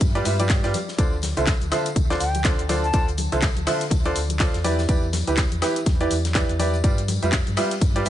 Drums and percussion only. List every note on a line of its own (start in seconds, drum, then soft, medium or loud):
0.00 kick loud
0.00 closed hi-hat medium
0.00 tambourine loud
0.00 tambourine medium
0.00 high conga medium
0.00 shaker soft
0.15 closed hi-hat soft
0.15 tambourine soft
0.15 shaker soft
0.25 open hi-hat loud
0.25 tambourine medium
0.25 shaker medium
0.39 closed hi-hat medium
0.39 tambourine medium
0.39 high conga medium
0.39 shaker soft
0.49 kick loud
0.49 snare loud
0.49 clap loud
0.49 closed hi-hat medium
0.49 tambourine medium
0.49 shaker soft
0.63 snare soft
0.63 closed hi-hat soft
0.63 tambourine soft
0.63 shaker soft
0.74 open hi-hat loud
0.74 tambourine medium
0.74 high conga medium
0.74 shaker medium
0.88 snare soft
0.88 tambourine medium
0.88 shaker soft
0.98 kick loud
0.98 closed hi-hat medium
0.98 tambourine medium
0.98 shaker soft
1.12 tambourine soft
1.22 snare medium
1.22 open hi-hat loud
1.22 tambourine medium
1.22 high conga medium
1.22 shaker medium
1.37 closed hi-hat soft
1.37 tambourine medium
1.37 shaker soft
1.47 kick loud
1.47 snare loud
1.47 clap loud
1.47 closed hi-hat medium
1.47 tambourine medium
1.47 shaker soft
1.61 closed hi-hat soft
1.61 tambourine soft
1.61 high conga medium
1.61 shaker soft
1.71 snare soft
1.71 open hi-hat loud
1.71 tambourine medium
1.71 high woodblock medium
1.71 shaker medium
1.85 closed hi-hat medium
1.85 tambourine medium
1.85 shaker soft
1.96 kick loud
1.96 closed hi-hat medium
1.96 tambourine medium
1.96 high conga medium
1.96 shaker soft
2.10 snare medium
2.10 closed hi-hat soft
2.10 tambourine soft
2.10 shaker soft
2.20 open hi-hat loud
2.20 tambourine medium
2.20 shaker medium
2.34 closed hi-hat medium
2.34 tambourine medium
2.34 high conga medium
2.34 shaker soft
2.44 kick loud
2.44 snare loud
2.44 clap loud
2.44 closed hi-hat medium
2.44 tambourine medium
2.44 shaker soft
2.59 closed hi-hat soft
2.59 tambourine soft
2.59 shaker soft
2.69 open hi-hat loud
2.69 tambourine medium
2.69 high conga medium
2.69 shaker medium
2.84 tambourine medium
2.84 shaker soft
2.93 kick loud
2.93 closed hi-hat medium
2.93 tambourine medium
2.93 shaker soft
3.08 closed hi-hat soft
3.08 tambourine soft
3.08 shaker soft
3.17 open hi-hat loud
3.17 tambourine medium
3.17 high conga medium
3.17 shaker medium
3.32 closed hi-hat soft
3.32 tambourine medium
3.32 shaker soft
3.42 kick loud
3.42 snare loud
3.42 clap loud
3.42 closed hi-hat medium
3.42 tambourine medium
3.42 shaker soft
3.56 closed hi-hat soft
3.56 tambourine soft
3.56 high conga medium
3.56 shaker soft
3.67 open hi-hat medium
3.67 open hi-hat loud
3.67 high woodblock medium
3.67 shaker medium
3.81 closed hi-hat medium
3.81 tambourine medium
3.81 shaker soft
3.90 kick loud
3.90 closed hi-hat medium
3.90 tambourine medium
3.90 high conga medium
3.90 shaker soft
4.05 closed hi-hat soft
4.05 tambourine soft
4.05 shaker soft
4.15 open hi-hat loud
4.15 tambourine medium
4.15 shaker medium
4.29 closed hi-hat medium
4.29 tambourine medium
4.29 high conga medium
4.29 shaker soft
4.39 kick loud
4.39 snare loud
4.39 clap loud
4.39 closed hi-hat medium
4.39 tambourine medium
4.39 shaker soft
4.54 snare soft
4.54 closed hi-hat soft
4.54 tambourine soft
4.54 shaker soft
4.64 open hi-hat loud
4.64 tambourine medium
4.64 high conga medium
4.64 shaker medium
4.79 snare soft
4.79 tambourine medium
4.79 shaker soft
4.89 kick loud
4.89 closed hi-hat medium
4.89 tambourine medium
4.89 shaker soft
5.03 tambourine soft
5.13 snare medium
5.13 open hi-hat loud
5.13 tambourine medium
5.13 high conga medium
5.13 shaker medium
5.27 closed hi-hat soft
5.27 tambourine medium
5.27 shaker soft
5.37 kick loud
5.37 snare loud
5.37 clap loud
5.37 closed hi-hat medium
5.37 tambourine medium
5.37 shaker soft
5.51 closed hi-hat soft
5.51 tambourine soft
5.51 high conga medium
5.51 shaker soft
5.62 snare loud
5.62 open hi-hat medium
5.62 tambourine medium
5.62 high woodblock medium
5.62 shaker medium
5.76 closed hi-hat medium
5.76 tambourine medium
5.76 shaker soft
5.86 kick loud
5.86 snare soft
5.86 closed hi-hat medium
5.86 tambourine medium
5.86 high conga medium
5.86 shaker soft
6.00 closed hi-hat soft
6.00 tambourine soft
6.00 shaker soft
6.11 open hi-hat loud
6.11 tambourine medium
6.11 shaker medium
6.25 snare soft
6.25 closed hi-hat medium
6.25 tambourine medium
6.25 high conga medium
6.25 shaker soft
6.35 kick loud
6.35 snare loud
6.35 clap loud
6.35 closed hi-hat medium
6.35 tambourine medium
6.35 shaker soft
6.49 closed hi-hat soft
6.49 tambourine soft
6.49 shaker soft
6.59 open hi-hat loud
6.59 tambourine medium
6.59 high conga medium
6.59 shaker medium
6.74 tambourine medium
6.74 shaker soft
6.84 kick loud
6.84 closed hi-hat medium
6.84 tambourine medium
6.84 shaker soft
6.98 closed hi-hat soft
6.98 tambourine soft
6.98 shaker soft
7.08 open hi-hat loud
7.08 tambourine medium
7.08 high conga medium
7.08 shaker medium
7.22 closed hi-hat soft
7.22 tambourine medium
7.22 shaker soft
7.32 kick loud
7.32 snare loud
7.32 clap loud
7.32 closed hi-hat medium
7.32 tambourine medium
7.32 shaker soft
7.47 closed hi-hat soft
7.47 tambourine soft
7.47 high conga medium
7.47 shaker soft
7.57 open hi-hat medium
7.57 open hi-hat loud
7.57 high woodblock medium
7.57 shaker medium
7.71 closed hi-hat medium
7.71 tambourine medium
7.71 shaker soft
7.81 kick loud
7.81 closed hi-hat medium
7.81 tambourine medium
7.81 high conga medium
7.81 shaker soft
7.96 closed hi-hat soft
7.96 tambourine soft
7.96 shaker soft
8.05 open hi-hat loud
8.05 tambourine medium